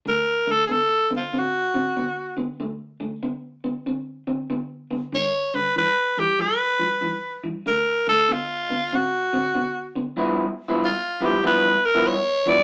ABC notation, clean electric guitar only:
X:1
M:4/4
L:1/16
Q:"Swing" 1/4=95
K:Dmix
V:1 name="Clean electric guitar" clef=bass
[D,A,]2 [D,A,]2 [D,B,]2 [D,B,]2 [D,C]2 [D,C]2 [D,B,]2 [D,B,]2 | [D,A,]2 [D,A,]2 [D,B,]2 [D,B,]2 [D,C]2 [D,C]2 [D,B,]2 [D,B,]2 | [G,,D,]2 [G,,D,]2 [G,,E,]2 [G,,E,]2 [G,,=F,]2 [G,,F,]2 [G,,E,]2 [G,,E,]2 | [D,A,]2 [D,A,]2 [D,B,]2 [D,B,]2 [D,C]2 [D,C]2 [D,B,]2 [D,B,]2 |
[K:Gmix] [G,,F,B,E] z2 [G,,F,B,E] z2 [G,,F,B,E] z [G,,F,B,E] z2 [G,,F,B,E] z2 [G,,F,B,E] z |]